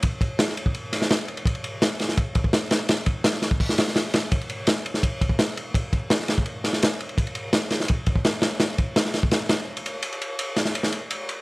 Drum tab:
RD |x-x-x-x-x-x-x-xx|xxx-x-x-x-x-x-x-|x-x-x-x---x-x-xx|xxx-x-x-x-x-x-x-|
HH |----------------|----------------|--------o-------|----------------|
SD |----oo----ooo---|----o-oo----o-o-|o---ooo--oooo-o-|----o--o----o---|
BD |o-o----o--------|o-------o-oo----|--o----oo-------|o-------o-oo----|

RD |x-x-x-x-x-x-x-xx|xxx-x-x-x-x-x-x-|x-x-x-x-x-x--xx-|xxx-x-x-x-x-x-x-|
HH |----------------|----------------|----------------|----------------|
SD |----ooo---ooo---|----o-oo----o-o-|o---ooo-o-o-----|------oo-o------|
BD |o-o----o--------|o-------o-oo----|--o----o--------|----------------|